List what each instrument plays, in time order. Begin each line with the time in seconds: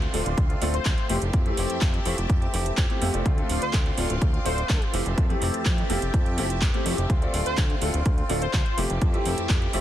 Already playing: clean electric guitar F3 A3 C4 F4, grand piano A3 C4 D4 F4 A4, string machine F4 D5 C6
0.02 closed hi-hat
0.13 analog synth bass D1, clean electric guitar F3 A3 C4 F4, grand piano A3 C4 D4 F4 A4, open hi-hat
0.25 analog synth bass D1, clean electric guitar A3 C4 F4, closed hi-hat
0.38 analog synth bass D2, kick, closed hi-hat
0.49 clean electric guitar A3 C4 F4, closed hi-hat
0.61 analog synth bass D1, clean electric guitar F3 A3 C4 F4, grand piano A3 C4 D4 F4 A4, open hi-hat
0.74 analog polysynth C5, closed hi-hat
0.85 analog synth bass D2, clean electric guitar F3 A3 F4, kick, clap, closed hi-hat
0.97 clean electric guitar A3 C4 F4, closed hi-hat
1.09 analog synth bass F1, clean electric guitar E3 A3 C4 G4, grand piano A3 C4 E4 F4 G4, string machine G4 E5 A5, open hi-hat
1.22 analog synth bass F1, closed hi-hat
1.33 analog synth bass F2, kick, closed hi-hat
1.45 grand piano A3 C4 E4 G4, closed hi-hat
1.57 analog synth bass F1, clean electric guitar E3 A3 C4 G4, open hi-hat
1.70 analog synth bass F2, closed hi-hat
1.81 analog synth bass F2, kick, clap, closed hi-hat
1.94 closed hi-hat
2.05 analog synth bass F1, clean electric guitar E3 A3 C4 G4, grand piano A3 C4 E4 F4 G4, open hi-hat
2.17 analog synth bass F1, clean electric guitar A3 C4 G4, closed hi-hat
2.30 analog synth bass F2, kick, closed hi-hat
2.41 clean electric guitar A3 C4 G4, closed hi-hat
2.53 analog synth bass F1, clean electric guitar E3 A3 C4 G4, open hi-hat
2.66 closed hi-hat
2.77 analog synth bass F2, clean electric guitar E3 A3 G4, kick, clap, closed hi-hat
2.89 grand piano A3 C4 E4 F4 G4, clean electric guitar A3 C4 G4, closed hi-hat
3.01 analog synth bass F1, grand piano A3 C4 E4 F4 G4, open hi-hat
3.13 analog synth bass F1, grand piano A3 C4 D4 F4 A4, clean electric guitar A3 C4 G4, closed hi-hat
3.25 analog synth bass D2, clean electric guitar A3 C4 F4, string machine F4 D5 C6, kick, closed hi-hat
3.37 grand piano A3 C4 D4 F4 A4, closed hi-hat
3.49 analog synth bass D1, clean electric guitar A3 C4 F4, open hi-hat
3.62 analog synth bass D2, analog polysynth C5, closed hi-hat
3.73 analog synth bass D2, clean electric guitar A3 C4 F4, kick, clap, closed hi-hat
3.86 closed hi-hat
3.97 analog synth bass D1, clean electric guitar A3 C4 F4, grand piano A3 C4 D4 F4 A4, open hi-hat
4.09 analog synth bass D1, clean electric guitar C4 F4, closed hi-hat
4.22 analog synth bass D2, kick, closed hi-hat
4.33 clean electric guitar C4 F4, closed hi-hat
4.45 analog synth bass D1, clean electric guitar A3 C4 F4, grand piano A3 C4 D4 F4 A4, analog polysynth C5, open hi-hat
4.58 closed hi-hat
4.69 analog synth bass D2, clean electric guitar A3 C4 F4, kick, clap, closed hi-hat
4.81 clean electric guitar C4 F4, closed hi-hat
4.93 analog synth bass F1, clean electric guitar E3 A3 C4 G4, grand piano A3 C4 E4 F4 G4, string machine G4 E5 A5, open hi-hat
5.06 analog synth bass F1, closed hi-hat
5.18 analog synth bass F2, kick, closed hi-hat
5.29 grand piano A3 C4 E4 G4, closed hi-hat
5.41 analog synth bass F1, clean electric guitar E3 A3 C4 G4, open hi-hat
5.54 closed hi-hat
5.65 analog synth bass F2, clean electric guitar E3 A3 C4 G4, kick, clap, closed hi-hat
5.78 closed hi-hat
5.89 analog synth bass F1, clean electric guitar E3 A3 C4 G4, grand piano A3 C4 E4 F4 G4, open hi-hat
6.01 analog synth bass F1, clean electric guitar A3 C4 G4, closed hi-hat
6.14 analog synth bass F2, kick, closed hi-hat
6.25 clean electric guitar A3 C4 G4, closed hi-hat
6.37 analog synth bass F1, clean electric guitar E3 A3 C4 G4, grand piano A3 C4 E4 F4 G4, open hi-hat
6.50 closed hi-hat
6.61 analog synth bass F2, clean electric guitar E3 A3 C4, kick, clap, closed hi-hat
6.73 grand piano A3 C4 E4 F4 G4, clean electric guitar A3 C4 G4, closed hi-hat
6.86 analog synth bass F1, grand piano A3 C4 E4 F4 G4, open hi-hat
6.97 analog synth bass F1, clean electric guitar A3 C4 G4, closed hi-hat
7.09 analog synth bass D2, clean electric guitar A3 C4 F4, string machine F4 D5 C6, kick, closed hi-hat
7.21 grand piano A3 C4 D4 F4 A4, closed hi-hat
7.33 analog synth bass D1, clean electric guitar A3 C4 F4, open hi-hat
7.46 analog synth bass D2, analog polysynth C5, closed hi-hat
7.57 analog synth bass D2, clean electric guitar F4, kick, clap, closed hi-hat
7.70 closed hi-hat
7.81 analog synth bass D1, clean electric guitar A3 C4 F4, grand piano A3 C4 D4 F4 A4, open hi-hat
7.93 analog synth bass D1, clean electric guitar C4 F4, closed hi-hat
8.06 analog synth bass D2, kick, closed hi-hat
8.17 clean electric guitar C4 F4, closed hi-hat
8.29 analog synth bass D1, clean electric guitar A3 C4 F4, grand piano A3 C4 D4 F4 A4, open hi-hat
8.42 analog polysynth C5, closed hi-hat
8.53 analog synth bass D2, clean electric guitar A3 C4 F4, kick, clap, closed hi-hat
8.65 clean electric guitar C4 F4, closed hi-hat
8.77 analog synth bass F1, clean electric guitar E3 A3 C4 G4, grand piano A3 C4 E4 F4 G4, string machine G4 E5 A5, open hi-hat
8.90 analog synth bass F1, closed hi-hat
9.02 analog synth bass F2, kick, closed hi-hat
9.13 grand piano A3 C4 E4 G4, closed hi-hat
9.25 analog synth bass F1, clean electric guitar E3 A3 C4 G4, open hi-hat
9.38 analog synth bass F2, closed hi-hat
9.49 analog synth bass F2, clean electric guitar E3, kick, clap, closed hi-hat
9.62 closed hi-hat
9.73 analog synth bass F1, clean electric guitar E3 A3 C4 G4, grand piano A3 C4 E4 F4 G4, open hi-hat